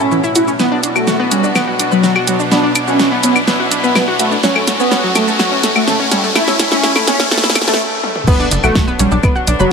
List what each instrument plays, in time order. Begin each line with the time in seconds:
Already playing: string section A2 A3 C#4 E4, synth drone B2 F#3, riser
0.00 analog synth lead C#4
0.11 synth pluck E3, shaker
0.24 synth pluck E4, shaker
0.35 analog synth lead E4, synth pluck F#4, closed hi-hat, shaker
0.48 synth pluck C#4, shaker
0.59 string section B2 B3 D4 F#4, synth pluck B3, analog synth lead B3, snare, shaker
0.72 synth pluck D4
0.83 synth pluck D4, closed hi-hat, shaker
0.96 analog synth lead A3, synth pluck F#4, claves, shaker
1.07 synth pluck F#4, snare, shaker
1.20 synth pluck B3
1.31 analog synth lead G3, synth pluck C#4, closed hi-hat, shaker
1.44 synth pluck D4, shaker
1.55 synth pluck B3, snare, claves, shaker
1.68 synth pluck F#4
1.79 synth pluck D4, closed hi-hat, shaker
1.92 analog synth lead F#3, synth pluck B4, shaker
2.03 synth pluck F#3, snare, shaker
2.16 synth pluck F#4, claves
2.27 analog synth lead F#3, synth pluck F#4, closed hi-hat, shaker
2.40 synth pluck D4, shaker
2.51 synth pluck B3, analog synth lead D4, string section E4, snare, shaker
2.64 synth pluck D4
2.75 synth pluck D4, closed hi-hat, claves, shaker
2.88 analog synth lead C#4, synth pluck F#4, shaker
2.99 synth pluck F#4, snare, shaker
3.12 synth pluck B3
3.23 analog synth lead B3, synth pluck C#4, closed hi-hat, shaker
3.36 synth pluck D4, claves, shaker
3.47 synth pluck B3, snare, shaker
3.60 synth pluck F#4
3.71 synth pluck D4, closed hi-hat, shaker
3.84 analog synth lead B3, synth pluck B4, shaker
3.95 synth pluck F#3, snare, claves, shaker
4.08 synth pluck F#4
4.19 analog synth lead A3, synth pluck F#4, closed hi-hat, shaker
4.32 synth pluck D4, shaker
4.43 string section A2 A3 C#4 F#4, synth pluck F#3, analog synth lead C#4, snare, shaker
4.56 synth pluck A3, claves
4.67 synth pluck A3, snare, closed hi-hat, shaker
4.79 analog synth lead B3, synth pluck C#4, shaker
4.91 synth pluck C#4, snare, shaker
5.04 synth pluck F#3
5.15 synth pluck F#3, analog synth lead A3, snare, closed hi-hat, claves, shaker
5.27 synth pluck A3, shaker
5.39 synth pluck F#3, snare, shaker
5.52 synth pluck C#4
5.63 synth pluck A3, snare, closed hi-hat, shaker
5.76 analog synth lead A3, synth pluck F#4, claves, shaker
5.87 synth pluck C#3, snare, shaker
6.00 synth pluck C#4
6.11 analog synth lead G3, synth pluck C#4, snare, closed hi-hat, shaker
6.24 synth pluck A3, shaker
6.35 synth pluck A3, string section C#4 E4, analog synth lead E4, snare, claves, shaker
6.48 synth pluck C#4, snare, shaker
6.59 synth pluck C#4, snare, closed hi-hat, shaker
6.72 analog synth lead C#4, synth pluck E4, snare, shaker
6.83 synth pluck E4, snare, shaker
6.96 synth pluck A3, snare, claves, shaker
7.07 synth pluck B3, analog synth lead C#4, snare, closed hi-hat, shaker
7.20 synth pluck C#4, snare, shaker
7.31 synth pluck A3, snare, shaker
7.38 snare
7.44 synth pluck E4, snare, shaker
7.50 snare
7.55 synth pluck A3, snare, closed hi-hat, claves, shaker
7.62 snare
7.68 analog synth lead A3, synth pluck A3, snare, shaker
7.74 snare
8.03 high tom
8.16 mid tom
8.27 analog synth bass B1, string section F#3 B3 D4, analog synth lead B3, synth pluck B3 B4, kick, crash, impact, shaker
8.40 synth pluck D4 D5, shaker
8.51 analog synth bass F#1, synth pluck D4 D5, closed hi-hat, shaker
8.64 analog synth bass B1, analog synth lead A3, synth pluck F#4 F#5, claves, shaker
8.75 analog synth bass B1, synth pluck F#4 F#5, kick, snare, shaker
8.88 synth pluck B3 B4, shaker
8.99 analog synth bass B1, analog synth lead G3, synth pluck C#4 C#5, closed hi-hat, shaker
9.12 analog synth bass B1, synth pluck D4 D5, shaker
9.23 analog synth bass B1, synth pluck B3 B4, kick, claves, shaker
9.36 synth pluck F#4 F#5, shaker
9.47 analog synth bass B1, synth pluck D4 D5, closed hi-hat, shaker
9.59 analog synth bass F#1, analog synth lead F#3, synth pluck B4 B5, shaker